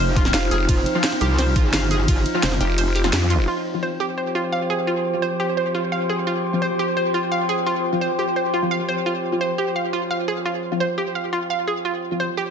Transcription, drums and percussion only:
0.16 kick loud
0.16 closed hi-hat medium
0.25 snare soft
0.34 snare loud
0.34 closed hi-hat medium
0.34 ride medium
0.51 closed hi-hat medium
0.69 kick loud
0.69 closed hi-hat loud
0.69 ride medium
0.86 closed hi-hat medium
1.04 snare loud
1.04 closed hi-hat loud
1.04 ride medium
1.12 snare soft
1.21 closed hi-hat medium
1.38 snare medium
1.38 closed hi-hat loud
1.38 ride medium
1.56 kick loud
1.56 closed hi-hat medium
1.73 snare loud
1.73 closed hi-hat loud
1.73 ride medium
1.91 closed hi-hat medium
2.08 kick loud
2.08 closed hi-hat loud
2.08 ride medium
2.26 closed hi-hat medium
2.43 snare loud
2.43 closed hi-hat loud
2.43 ride medium
2.52 snare soft
2.61 closed hi-hat medium
2.78 closed hi-hat loud
2.78 ride medium
2.95 closed hi-hat medium
3.04 snare soft
3.13 snare loud
3.13 closed hi-hat loud
3.13 ride medium
3.30 closed hi-hat medium

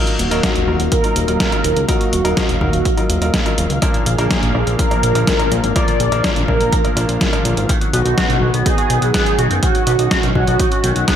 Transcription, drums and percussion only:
0.07 closed hi-hat soft
0.19 closed hi-hat medium
0.31 closed hi-hat soft
0.43 kick loud
0.43 snare loud
0.43 closed hi-hat loud
0.56 closed hi-hat soft
0.80 closed hi-hat soft
0.92 kick loud
0.92 closed hi-hat medium
1.04 closed hi-hat soft
1.16 closed hi-hat medium
1.28 closed hi-hat soft
1.40 kick loud
1.40 snare loud
1.40 closed hi-hat medium
1.52 closed hi-hat soft
1.64 closed hi-hat medium
1.76 closed hi-hat soft
1.89 kick loud
1.89 closed hi-hat medium
2.01 closed hi-hat soft
2.13 closed hi-hat medium
2.25 closed hi-hat soft
2.37 kick loud
2.37 snare loud
2.37 closed hi-hat medium
2.49 closed hi-hat soft
2.61 kick medium
2.73 closed hi-hat soft
2.85 kick loud
2.85 closed hi-hat medium
2.98 closed hi-hat soft
3.10 closed hi-hat medium
3.22 closed hi-hat soft
3.34 kick loud
3.34 snare loud
3.34 closed hi-hat medium
3.46 closed hi-hat soft
3.58 closed hi-hat medium
3.70 closed hi-hat soft
3.82 kick loud
3.82 closed hi-hat medium
3.94 closed hi-hat soft
4.06 closed hi-hat medium
4.18 closed hi-hat soft
4.31 kick loud
4.31 snare loud
4.31 closed hi-hat medium
4.43 closed hi-hat soft
4.67 closed hi-hat soft
4.79 kick loud
4.79 closed hi-hat medium
4.91 closed hi-hat soft
5.03 closed hi-hat medium
5.15 closed hi-hat soft
5.27 kick loud
5.27 snare loud
5.27 closed hi-hat medium
5.39 closed hi-hat soft
5.52 closed hi-hat medium
5.64 closed hi-hat soft
5.76 kick loud
5.76 closed hi-hat medium
5.88 closed hi-hat soft
6.00 closed hi-hat medium
6.12 closed hi-hat soft
6.24 kick loud
6.24 snare loud
6.24 closed hi-hat medium
6.36 closed hi-hat soft
6.48 kick medium
6.61 closed hi-hat soft
6.73 kick loud
6.73 closed hi-hat medium
6.85 closed hi-hat soft
6.97 closed hi-hat medium
7.09 closed hi-hat soft
7.21 kick loud
7.21 snare loud
7.21 closed hi-hat medium
7.33 closed hi-hat soft
7.45 closed hi-hat medium
7.57 closed hi-hat soft
7.69 kick loud
7.69 closed hi-hat medium
7.81 closed hi-hat soft
7.93 closed hi-hat medium
8.06 closed hi-hat soft
8.18 kick loud
8.18 snare loud
8.18 closed hi-hat medium
8.30 closed hi-hat soft
8.54 closed hi-hat soft
8.66 kick loud
8.66 closed hi-hat medium
8.78 closed hi-hat soft
8.90 closed hi-hat medium
9.02 closed hi-hat soft
9.14 kick loud
9.14 snare loud
9.14 closed hi-hat medium
9.26 closed hi-hat soft
9.39 closed hi-hat medium
9.51 closed hi-hat soft
9.63 kick loud
9.63 closed hi-hat medium
9.75 closed hi-hat soft
9.87 closed hi-hat medium
9.99 closed hi-hat soft
10.11 kick loud
10.11 snare loud
10.11 closed hi-hat medium
10.23 closed hi-hat soft
10.35 kick medium
10.47 closed hi-hat soft
10.60 kick loud
10.60 closed hi-hat medium
10.72 closed hi-hat soft
10.84 closed hi-hat medium
10.96 closed hi-hat soft
11.08 kick loud
11.08 snare loud
11.08 closed hi-hat medium

